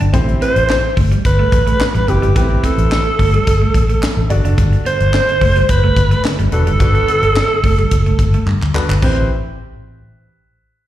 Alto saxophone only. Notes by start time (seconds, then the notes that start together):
0.42 C5
1.26 B4
2.10 G4
2.37 G4
2.65 A4
4.87 C5
5.70 B4
6.53 A4
9.04 C5